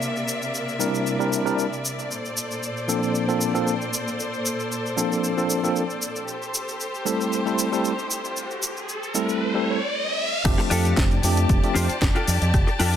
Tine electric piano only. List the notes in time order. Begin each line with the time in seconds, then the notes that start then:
0.79 G3 C4 D4 E4 A#4
1.19 G3 C4 D4 E4 A#4
1.45 G3 C4 D4 E4 A#4
2.88 F3 A#3 C4 D4 A4
3.28 F3 A#3 C4 D4 A4
3.54 F3 A#3 C4 D4 A4
4.97 F3 A#3 C4 D4 A4
5.37 F3 A#3 C4 D4 A4
5.63 F3 A#3 C4 D4 A4
7.05 G3 A3 C4 E4 A4
7.45 G3 A3 C4 E4 A4
7.72 G3 A3 C4 E4 A4
9.15 G3 A3 C4 E4 A4
9.54 G3 A3 C4 E4 A4
10.44 F3 A3 C4 D4 G4
11.24 F3 A3 C4 D4 G4
11.63 F3 A3 C4 D4 G4